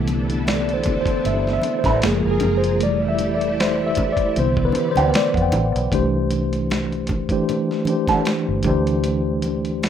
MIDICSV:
0, 0, Header, 1, 7, 480
1, 0, Start_track
1, 0, Key_signature, 0, "major"
1, 0, Tempo, 779221
1, 1726, Time_signature, 4, 2, 24, 8
1, 6093, End_track
2, 0, Start_track
2, 0, Title_t, "Tine electric piano"
2, 0, Program_c, 0, 4
2, 0, Control_c, 0, 64, 127
2, 0, Note_on_c, 0, 50, 53
2, 0, Note_on_c, 0, 52, 51
2, 0, Note_on_c, 0, 57, 49
2, 0, Note_on_c, 0, 59, 61
2, 133, Note_off_c, 0, 50, 0
2, 135, Note_off_c, 0, 52, 0
2, 135, Note_off_c, 0, 57, 0
2, 137, Note_off_c, 0, 59, 0
2, 294, Note_on_c, 0, 74, 80
2, 453, Note_on_c, 0, 72, 74
2, 455, Note_off_c, 0, 74, 0
2, 614, Note_off_c, 0, 72, 0
2, 622, Note_on_c, 0, 72, 88
2, 778, Note_on_c, 0, 76, 83
2, 779, Note_off_c, 0, 72, 0
2, 935, Note_off_c, 0, 76, 0
2, 943, Note_on_c, 0, 76, 81
2, 1084, Note_off_c, 0, 76, 0
2, 1102, Note_on_c, 0, 72, 81
2, 1252, Note_on_c, 0, 53, 52
2, 1253, Control_c, 0, 64, 0
2, 1254, Note_on_c, 0, 56, 49
2, 1258, Note_off_c, 0, 72, 0
2, 1260, Note_on_c, 0, 58, 65
2, 1266, Note_on_c, 0, 68, 78
2, 1374, Control_c, 0, 64, 127
2, 1416, Note_off_c, 0, 68, 0
2, 1423, Note_on_c, 0, 68, 85
2, 1564, Note_off_c, 0, 68, 0
2, 1585, Note_on_c, 0, 72, 84
2, 1705, Note_off_c, 0, 53, 0
2, 1706, Note_off_c, 0, 56, 0
2, 1710, Note_off_c, 0, 58, 0
2, 1726, Note_on_c, 0, 52, 56
2, 1729, Note_on_c, 0, 55, 52
2, 1733, Control_c, 0, 64, 0
2, 1734, Note_on_c, 0, 57, 59
2, 1740, Note_off_c, 0, 72, 0
2, 1745, Note_on_c, 0, 74, 98
2, 1828, Control_c, 0, 64, 127
2, 1885, Note_off_c, 0, 74, 0
2, 1901, Note_on_c, 0, 76, 97
2, 2043, Note_off_c, 0, 76, 0
2, 2060, Note_on_c, 0, 74, 79
2, 2129, Note_off_c, 0, 74, 0
2, 2220, Note_on_c, 0, 72, 93
2, 2378, Note_off_c, 0, 72, 0
2, 2382, Note_on_c, 0, 76, 91
2, 2539, Note_off_c, 0, 76, 0
2, 2540, Note_on_c, 0, 74, 89
2, 2661, Note_off_c, 0, 52, 0
2, 2663, Note_off_c, 0, 55, 0
2, 2665, Note_off_c, 0, 57, 0
2, 2682, Note_off_c, 0, 74, 0
2, 2690, Note_on_c, 0, 50, 55
2, 2694, Note_on_c, 0, 52, 53
2, 2695, Control_c, 0, 64, 0
2, 2698, Note_on_c, 0, 59, 61
2, 2706, Note_on_c, 0, 72, 94
2, 2807, Control_c, 0, 64, 127
2, 2860, Note_off_c, 0, 72, 0
2, 2865, Note_on_c, 0, 71, 92
2, 3020, Note_off_c, 0, 71, 0
2, 3025, Note_on_c, 0, 72, 88
2, 3180, Note_off_c, 0, 72, 0
2, 3180, Note_on_c, 0, 74, 97
2, 3234, Note_off_c, 0, 74, 0
2, 3297, Note_on_c, 0, 78, 64
2, 3328, Note_off_c, 0, 78, 0
2, 3340, Note_on_c, 0, 79, 83
2, 3623, Note_off_c, 0, 50, 0
2, 3625, Note_off_c, 0, 52, 0
2, 3627, Note_off_c, 0, 59, 0
2, 3631, Note_off_c, 0, 79, 0
2, 3646, Note_on_c, 0, 52, 87
2, 3650, Note_on_c, 0, 57, 86
2, 3653, Note_on_c, 0, 62, 75
2, 3655, Control_c, 0, 64, 0
2, 3658, Note_on_c, 0, 67, 75
2, 3662, Note_on_c, 0, 72, 93
2, 3767, Control_c, 0, 64, 127
2, 4342, Note_off_c, 0, 52, 0
2, 4344, Note_off_c, 0, 57, 0
2, 4346, Note_off_c, 0, 62, 0
2, 4348, Note_off_c, 0, 67, 0
2, 4350, Note_off_c, 0, 72, 0
2, 4495, Note_on_c, 0, 52, 82
2, 4498, Note_on_c, 0, 57, 79
2, 4502, Note_on_c, 0, 62, 76
2, 4508, Note_on_c, 0, 67, 78
2, 4512, Note_on_c, 0, 72, 86
2, 4788, Note_off_c, 0, 52, 0
2, 4790, Note_off_c, 0, 57, 0
2, 4792, Note_off_c, 0, 62, 0
2, 4795, Note_off_c, 0, 67, 0
2, 4797, Note_off_c, 0, 72, 0
2, 4846, Note_on_c, 0, 52, 72
2, 4851, Note_on_c, 0, 57, 69
2, 4857, Note_on_c, 0, 62, 66
2, 4861, Note_on_c, 0, 67, 73
2, 4866, Note_on_c, 0, 72, 76
2, 5320, Note_off_c, 0, 52, 0
2, 5324, Note_off_c, 0, 57, 0
2, 5328, Note_off_c, 0, 62, 0
2, 5328, Note_on_c, 0, 52, 83
2, 5331, Note_off_c, 0, 67, 0
2, 5331, Note_on_c, 0, 57, 73
2, 5335, Control_c, 0, 64, 0
2, 5335, Note_on_c, 0, 62, 81
2, 5336, Note_off_c, 0, 72, 0
2, 5338, Note_on_c, 0, 67, 81
2, 5344, Note_on_c, 0, 72, 96
2, 5442, Control_c, 0, 64, 127
2, 6093, Note_off_c, 0, 52, 0
2, 6093, Note_off_c, 0, 57, 0
2, 6093, Note_off_c, 0, 62, 0
2, 6093, Note_off_c, 0, 67, 0
2, 6093, Note_off_c, 0, 72, 0
2, 6093, End_track
3, 0, Start_track
3, 0, Title_t, "String machine"
3, 0, Program_c, 1, 50
3, 0, Note_on_c, 1, 48, 77
3, 0, Note_on_c, 1, 59, 77
3, 0, Note_on_c, 1, 62, 74
3, 0, Note_on_c, 1, 64, 69
3, 0, Note_on_c, 1, 69, 91
3, 1220, Note_off_c, 1, 64, 0
3, 1227, Note_off_c, 1, 59, 0
3, 1229, Note_off_c, 1, 48, 0
3, 1229, Note_off_c, 1, 62, 0
3, 1229, Note_off_c, 1, 69, 0
3, 1244, Note_on_c, 1, 65, 74
3, 1244, Note_on_c, 1, 68, 70
3, 1247, Note_on_c, 1, 53, 77
3, 1247, Note_on_c, 1, 70, 88
3, 1720, Note_off_c, 1, 65, 0
3, 1720, Note_off_c, 1, 68, 0
3, 1722, Note_off_c, 1, 53, 0
3, 1722, Note_off_c, 1, 70, 0
3, 1734, Note_on_c, 1, 52, 78
3, 1735, Note_on_c, 1, 69, 89
3, 1736, Note_on_c, 1, 64, 72
3, 1736, Note_on_c, 1, 67, 73
3, 2681, Note_off_c, 1, 52, 0
3, 2681, Note_off_c, 1, 69, 0
3, 2682, Note_off_c, 1, 67, 0
3, 2687, Note_on_c, 1, 74, 89
3, 2691, Note_on_c, 1, 48, 91
3, 2693, Note_on_c, 1, 59, 77
3, 3632, Note_off_c, 1, 64, 0
3, 3637, Note_off_c, 1, 74, 0
3, 3639, Note_off_c, 1, 48, 0
3, 3640, Note_off_c, 1, 59, 0
3, 6093, End_track
4, 0, Start_track
4, 0, Title_t, "Clean electric guitar"
4, 0, Program_c, 2, 27
4, 1144, Note_on_c, 2, 64, 60
4, 1146, Note_on_c, 2, 71, 60
4, 1152, Note_on_c, 2, 62, 55
4, 1155, Note_on_c, 2, 57, 51
4, 1219, Note_off_c, 2, 64, 0
4, 1220, Note_off_c, 2, 71, 0
4, 1223, Note_off_c, 2, 62, 0
4, 1224, Note_off_c, 2, 57, 0
4, 3062, Note_on_c, 2, 67, 64
4, 3065, Note_on_c, 2, 62, 64
4, 3069, Note_on_c, 2, 59, 64
4, 3072, Note_on_c, 2, 52, 57
4, 3138, Note_off_c, 2, 67, 0
4, 3139, Note_off_c, 2, 62, 0
4, 3141, Note_off_c, 2, 59, 0
4, 3143, Note_off_c, 2, 52, 0
4, 4983, Note_on_c, 2, 69, 65
4, 4988, Note_on_c, 2, 62, 58
4, 4989, Note_on_c, 2, 59, 49
4, 4993, Note_on_c, 2, 52, 55
4, 5058, Note_off_c, 2, 69, 0
4, 5061, Note_off_c, 2, 59, 0
4, 5061, Note_off_c, 2, 62, 0
4, 5064, Note_off_c, 2, 52, 0
4, 6093, End_track
5, 0, Start_track
5, 0, Title_t, "Fingered electric bass"
5, 0, Program_c, 3, 33
5, 0, Note_on_c, 3, 36, 100
5, 634, Note_off_c, 3, 36, 0
5, 770, Note_on_c, 3, 31, 79
5, 968, Note_off_c, 3, 31, 0
5, 1138, Note_on_c, 3, 33, 94
5, 1228, Note_off_c, 3, 33, 0
5, 1256, Note_on_c, 3, 30, 90
5, 1360, Note_off_c, 3, 30, 0
5, 1385, Note_on_c, 3, 30, 81
5, 1473, Note_off_c, 3, 30, 0
5, 1493, Note_on_c, 3, 30, 97
5, 1735, Note_off_c, 3, 30, 0
5, 1735, Note_on_c, 3, 29, 103
5, 2556, Note_off_c, 3, 29, 0
5, 2691, Note_on_c, 3, 36, 86
5, 2888, Note_off_c, 3, 36, 0
5, 3061, Note_on_c, 3, 38, 93
5, 3151, Note_off_c, 3, 38, 0
5, 3293, Note_on_c, 3, 41, 80
5, 3386, Note_off_c, 3, 41, 0
5, 3413, Note_on_c, 3, 33, 108
5, 3518, Note_off_c, 3, 33, 0
5, 3545, Note_on_c, 3, 35, 94
5, 3633, Note_off_c, 3, 35, 0
5, 3646, Note_on_c, 3, 36, 86
5, 4472, Note_off_c, 3, 36, 0
5, 5226, Note_on_c, 3, 31, 76
5, 5327, Note_on_c, 3, 38, 102
5, 5336, Note_off_c, 3, 31, 0
5, 6093, Note_off_c, 3, 38, 0
5, 6093, End_track
6, 0, Start_track
6, 0, Title_t, "Muted fingered electric bass strokes"
6, 2932, Note_on_c, 9, 29, 51
6, 2994, Note_off_c, 9, 29, 0
6, 6093, End_track
7, 0, Start_track
7, 0, Title_t, "Drums"
7, 46, Note_on_c, 9, 42, 69
7, 52, Note_on_c, 9, 62, 27
7, 52, Note_on_c, 9, 63, 37
7, 108, Note_off_c, 9, 42, 0
7, 114, Note_off_c, 9, 62, 0
7, 114, Note_off_c, 9, 63, 0
7, 183, Note_on_c, 9, 42, 50
7, 244, Note_off_c, 9, 42, 0
7, 290, Note_on_c, 9, 62, 29
7, 294, Note_on_c, 9, 42, 71
7, 297, Note_on_c, 9, 26, 89
7, 298, Note_on_c, 9, 38, 104
7, 351, Note_off_c, 9, 62, 0
7, 356, Note_off_c, 9, 42, 0
7, 359, Note_off_c, 9, 26, 0
7, 359, Note_off_c, 9, 38, 0
7, 424, Note_on_c, 9, 42, 31
7, 485, Note_off_c, 9, 42, 0
7, 514, Note_on_c, 9, 42, 72
7, 528, Note_on_c, 9, 36, 89
7, 532, Note_on_c, 9, 62, 31
7, 532, Note_on_c, 9, 64, 68
7, 576, Note_off_c, 9, 42, 0
7, 590, Note_off_c, 9, 36, 0
7, 593, Note_off_c, 9, 62, 0
7, 593, Note_off_c, 9, 64, 0
7, 650, Note_on_c, 9, 36, 97
7, 657, Note_on_c, 9, 42, 43
7, 712, Note_off_c, 9, 36, 0
7, 719, Note_off_c, 9, 42, 0
7, 771, Note_on_c, 9, 42, 65
7, 773, Note_on_c, 9, 64, 56
7, 832, Note_off_c, 9, 42, 0
7, 835, Note_off_c, 9, 64, 0
7, 908, Note_on_c, 9, 38, 34
7, 969, Note_off_c, 9, 38, 0
7, 995, Note_on_c, 9, 63, 59
7, 1006, Note_on_c, 9, 42, 70
7, 1057, Note_off_c, 9, 63, 0
7, 1068, Note_off_c, 9, 42, 0
7, 1133, Note_on_c, 9, 36, 94
7, 1133, Note_on_c, 9, 63, 73
7, 1138, Note_on_c, 9, 42, 47
7, 1142, Note_on_c, 9, 38, 31
7, 1195, Note_off_c, 9, 36, 0
7, 1195, Note_off_c, 9, 63, 0
7, 1200, Note_off_c, 9, 42, 0
7, 1203, Note_off_c, 9, 38, 0
7, 1244, Note_on_c, 9, 42, 73
7, 1253, Note_on_c, 9, 26, 83
7, 1254, Note_on_c, 9, 38, 100
7, 1305, Note_off_c, 9, 42, 0
7, 1314, Note_off_c, 9, 26, 0
7, 1315, Note_off_c, 9, 38, 0
7, 1478, Note_on_c, 9, 42, 70
7, 1482, Note_on_c, 9, 63, 65
7, 1482, Note_on_c, 9, 64, 74
7, 1539, Note_off_c, 9, 42, 0
7, 1544, Note_off_c, 9, 63, 0
7, 1544, Note_off_c, 9, 64, 0
7, 1624, Note_on_c, 9, 42, 55
7, 1686, Note_off_c, 9, 42, 0
7, 1728, Note_on_c, 9, 42, 83
7, 1790, Note_off_c, 9, 42, 0
7, 1962, Note_on_c, 9, 42, 69
7, 1973, Note_on_c, 9, 62, 28
7, 1973, Note_on_c, 9, 63, 41
7, 2024, Note_off_c, 9, 42, 0
7, 2034, Note_off_c, 9, 62, 0
7, 2034, Note_off_c, 9, 63, 0
7, 2102, Note_on_c, 9, 42, 49
7, 2164, Note_off_c, 9, 42, 0
7, 2218, Note_on_c, 9, 42, 74
7, 2221, Note_on_c, 9, 26, 80
7, 2222, Note_on_c, 9, 38, 102
7, 2280, Note_off_c, 9, 42, 0
7, 2282, Note_off_c, 9, 26, 0
7, 2283, Note_off_c, 9, 38, 0
7, 2434, Note_on_c, 9, 42, 68
7, 2447, Note_on_c, 9, 36, 90
7, 2449, Note_on_c, 9, 62, 33
7, 2449, Note_on_c, 9, 64, 73
7, 2496, Note_off_c, 9, 42, 0
7, 2509, Note_off_c, 9, 36, 0
7, 2511, Note_off_c, 9, 62, 0
7, 2511, Note_off_c, 9, 64, 0
7, 2568, Note_on_c, 9, 36, 92
7, 2571, Note_on_c, 9, 42, 43
7, 2629, Note_off_c, 9, 36, 0
7, 2633, Note_off_c, 9, 42, 0
7, 2687, Note_on_c, 9, 42, 66
7, 2688, Note_on_c, 9, 64, 60
7, 2749, Note_off_c, 9, 42, 0
7, 2750, Note_off_c, 9, 64, 0
7, 2814, Note_on_c, 9, 36, 94
7, 2876, Note_off_c, 9, 36, 0
7, 2910, Note_on_c, 9, 63, 65
7, 2926, Note_on_c, 9, 42, 77
7, 2971, Note_off_c, 9, 63, 0
7, 2987, Note_off_c, 9, 42, 0
7, 3053, Note_on_c, 9, 63, 82
7, 3061, Note_on_c, 9, 42, 50
7, 3114, Note_off_c, 9, 63, 0
7, 3123, Note_off_c, 9, 42, 0
7, 3165, Note_on_c, 9, 42, 83
7, 3174, Note_on_c, 9, 26, 80
7, 3175, Note_on_c, 9, 38, 109
7, 3227, Note_off_c, 9, 42, 0
7, 3236, Note_off_c, 9, 26, 0
7, 3237, Note_off_c, 9, 38, 0
7, 3291, Note_on_c, 9, 36, 89
7, 3309, Note_on_c, 9, 42, 36
7, 3353, Note_off_c, 9, 36, 0
7, 3371, Note_off_c, 9, 42, 0
7, 3401, Note_on_c, 9, 42, 79
7, 3402, Note_on_c, 9, 62, 34
7, 3402, Note_on_c, 9, 63, 74
7, 3402, Note_on_c, 9, 64, 79
7, 3462, Note_off_c, 9, 42, 0
7, 3463, Note_off_c, 9, 62, 0
7, 3463, Note_off_c, 9, 63, 0
7, 3463, Note_off_c, 9, 64, 0
7, 3547, Note_on_c, 9, 42, 56
7, 3609, Note_off_c, 9, 42, 0
7, 3645, Note_on_c, 9, 36, 100
7, 3650, Note_on_c, 9, 42, 77
7, 3707, Note_off_c, 9, 36, 0
7, 3712, Note_off_c, 9, 42, 0
7, 3884, Note_on_c, 9, 42, 66
7, 3890, Note_on_c, 9, 62, 23
7, 3890, Note_on_c, 9, 63, 39
7, 3946, Note_off_c, 9, 42, 0
7, 3952, Note_off_c, 9, 62, 0
7, 3952, Note_off_c, 9, 63, 0
7, 4021, Note_on_c, 9, 42, 46
7, 4083, Note_off_c, 9, 42, 0
7, 4129, Note_on_c, 9, 62, 26
7, 4135, Note_on_c, 9, 42, 74
7, 4137, Note_on_c, 9, 26, 73
7, 4138, Note_on_c, 9, 38, 89
7, 4191, Note_off_c, 9, 62, 0
7, 4196, Note_off_c, 9, 42, 0
7, 4199, Note_off_c, 9, 26, 0
7, 4199, Note_off_c, 9, 38, 0
7, 4265, Note_on_c, 9, 42, 28
7, 4327, Note_off_c, 9, 42, 0
7, 4355, Note_on_c, 9, 42, 66
7, 4369, Note_on_c, 9, 36, 91
7, 4371, Note_on_c, 9, 64, 61
7, 4417, Note_off_c, 9, 42, 0
7, 4430, Note_off_c, 9, 36, 0
7, 4433, Note_off_c, 9, 64, 0
7, 4491, Note_on_c, 9, 36, 86
7, 4494, Note_on_c, 9, 42, 43
7, 4552, Note_off_c, 9, 36, 0
7, 4556, Note_off_c, 9, 42, 0
7, 4613, Note_on_c, 9, 42, 66
7, 4617, Note_on_c, 9, 62, 24
7, 4617, Note_on_c, 9, 64, 56
7, 4675, Note_off_c, 9, 42, 0
7, 4679, Note_off_c, 9, 62, 0
7, 4679, Note_off_c, 9, 64, 0
7, 4749, Note_on_c, 9, 38, 29
7, 4811, Note_off_c, 9, 38, 0
7, 4837, Note_on_c, 9, 62, 30
7, 4837, Note_on_c, 9, 63, 60
7, 4849, Note_on_c, 9, 42, 62
7, 4898, Note_off_c, 9, 62, 0
7, 4898, Note_off_c, 9, 63, 0
7, 4911, Note_off_c, 9, 42, 0
7, 4974, Note_on_c, 9, 36, 82
7, 4977, Note_on_c, 9, 63, 70
7, 4981, Note_on_c, 9, 42, 44
7, 4984, Note_on_c, 9, 38, 31
7, 5036, Note_off_c, 9, 36, 0
7, 5039, Note_off_c, 9, 63, 0
7, 5042, Note_off_c, 9, 42, 0
7, 5046, Note_off_c, 9, 38, 0
7, 5084, Note_on_c, 9, 42, 64
7, 5088, Note_on_c, 9, 62, 28
7, 5093, Note_on_c, 9, 26, 72
7, 5094, Note_on_c, 9, 38, 88
7, 5146, Note_off_c, 9, 42, 0
7, 5149, Note_off_c, 9, 62, 0
7, 5155, Note_off_c, 9, 26, 0
7, 5156, Note_off_c, 9, 38, 0
7, 5314, Note_on_c, 9, 42, 66
7, 5323, Note_on_c, 9, 62, 31
7, 5323, Note_on_c, 9, 63, 62
7, 5325, Note_on_c, 9, 36, 100
7, 5376, Note_off_c, 9, 42, 0
7, 5385, Note_off_c, 9, 62, 0
7, 5385, Note_off_c, 9, 63, 0
7, 5387, Note_off_c, 9, 36, 0
7, 5463, Note_on_c, 9, 42, 50
7, 5525, Note_off_c, 9, 42, 0
7, 5567, Note_on_c, 9, 42, 79
7, 5570, Note_on_c, 9, 62, 27
7, 5628, Note_off_c, 9, 42, 0
7, 5631, Note_off_c, 9, 62, 0
7, 5805, Note_on_c, 9, 42, 67
7, 5817, Note_on_c, 9, 62, 26
7, 5817, Note_on_c, 9, 63, 38
7, 5866, Note_off_c, 9, 42, 0
7, 5878, Note_off_c, 9, 62, 0
7, 5878, Note_off_c, 9, 63, 0
7, 5943, Note_on_c, 9, 42, 44
7, 6005, Note_off_c, 9, 42, 0
7, 6053, Note_on_c, 9, 62, 25
7, 6057, Note_on_c, 9, 42, 78
7, 6060, Note_on_c, 9, 26, 82
7, 6061, Note_on_c, 9, 38, 88
7, 6093, Note_off_c, 9, 26, 0
7, 6093, Note_off_c, 9, 38, 0
7, 6093, Note_off_c, 9, 42, 0
7, 6093, Note_off_c, 9, 62, 0
7, 6093, End_track
0, 0, End_of_file